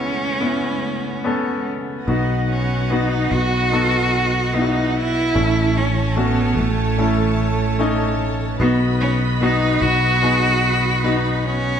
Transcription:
Already playing: C#2 C#3 A3 B3 C#4 D#4 E4 A4
0.41 B3 C#4 E4
1.24 B3 C#4 A4
2.07 B1 B3 D#4 F#4 B4 D#5 F#5
2.51 C#4
2.90 B3 D#4 F#4
3.32 B1 F#4
3.71 B3 D#4 A4
4.53 B3 D#4 E4 D#5
4.62 F#4
4.96 E4
5.34 A1 E3 A3 C#4 E4 A4 C#5 A5
5.77 C#4
6.16 A3 B3 C#4 F#4
6.57 A1 A3
6.97 A3 C#4 E4
7.79 A3 C#4 D#4
8.60 B1 B3 D#4 F#4 B4 D#5 B5
9.01 C#4
9.41 B3 D#4 F#4
9.82 B1 F#4
10.22 B3 D#4 G#4
11.04 B3 D#4 F#4
11.44 C#4

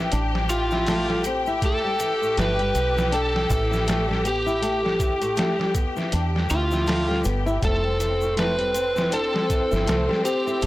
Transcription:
Already playing: E3 G4
0.12 A1 D4, closed hi-hat, shaker
0.35 G3, snare
0.49 E3 F4, closed hi-hat, shaker
0.71 E4, snare, shaker
0.86 A3, snare, open hi-hat, shaker
1.10 G3, snare
1.24 C4, closed hi-hat, shaker
1.46 E4, shaker
1.62 G1 A3 A4, kick, closed hi-hat, shaker
1.85 G3
2.00 E3, closed hi-hat, shaker
2.22 A2, shaker
2.37 G1 A3 B4, snare, closed hi-hat, shaker
2.59 G3, closed hi-hat
2.75 B1 B3, closed hi-hat, shaker
2.96 E3, snare, shaker
3.12 D4 A4, closed hi-hat, shaker
3.34 G3, snare
3.49 A1 E3, kick, closed hi-hat, shaker
3.71 E4, snare, shaker
3.87 A3, snare, closed hi-hat, shaker
4.09 G3, snare
4.25 B3 G4, closed hi-hat, shaker
4.46 E4, shaker
4.62 A3, closed hi-hat, shaker
4.84 G3, snare
5.00 E3, kick, closed hi-hat, shaker
5.21 A2, closed hi-hat, shaker
5.37 A3, snare, closed hi-hat, shaker
5.59 G3, snare
5.75 B3, kick, closed hi-hat, shaker
5.96 E3, snare, shaker
6.12 E2 D4, closed hi-hat, shaker
6.35 G3, snare
6.50 D2 E3 F4, closed hi-hat, shaker
6.71 E4, snare, shaker
6.87 A3, snare, open hi-hat, shaker
7.09 G3, snare
7.24 G1 B3, closed hi-hat, shaker
7.46 E4, shaker
7.62 F1 A3 C4 A4, kick, closed hi-hat, shaker
7.84 G3
8.00 E3, closed hi-hat, shaker
8.21 A2, shaker
8.37 A3 B4, snare, closed hi-hat, shaker
8.58 G3, closed hi-hat
8.74 C4, closed hi-hat, shaker
8.96 E3, snare, shaker
9.12 D4 A4, closed hi-hat, shaker
9.34 G3, snare
9.50 E3, kick, closed hi-hat, shaker
9.71 G1 E4, snare, shaker
9.87 C2 A3, snare, closed hi-hat, shaker
10.09 G3, snare
10.25 C4 G4, closed hi-hat, shaker
10.47 E4, shaker
10.62 F1 A3, closed hi-hat, shaker

